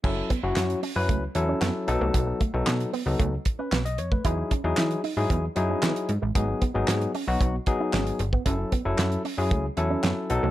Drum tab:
CC |x---------------|----------------|----------------|----------------|
HH |--x-xxo-x-x-x-x-|x-x-xxo-x-x-xxx-|x-x-xxo-x-x-xxx-|x-x-xxo-x-x-xxx-|
CP |----x-------x---|----x-------x---|----x-------x---|----x-------x---|
SD |----o-------o---|----o-------o---|----o-------o---|----o-------o---|
BD |o-o-----o-------|o-o-----o-o----o|o-o-----o-------|o-o-----o-o----o|

CC |----------------|
HH |x-x-xxo-x-x-x-x-|
CP |----x-------x---|
SD |----o-------o---|
BD |o-o-----o-------|